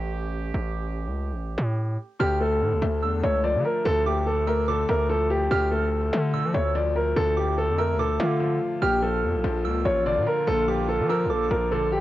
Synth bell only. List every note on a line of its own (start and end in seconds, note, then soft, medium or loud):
2.20 2.59 F6 loud
3.02 3.41 E6 medium
4.06 4.45 D6 medium
4.47 4.67 E6 medium
4.68 5.47 D6 medium
5.51 5.90 F6 loud
6.34 6.72 E6 medium
7.37 7.76 D6 medium
7.78 7.98 E6 medium
7.99 8.38 D6 medium
8.82 9.21 F6 loud
9.65 10.04 E6 medium
10.68 11.07 D6 medium
11.10 11.29 E6 medium
11.30 12.01 D6 medium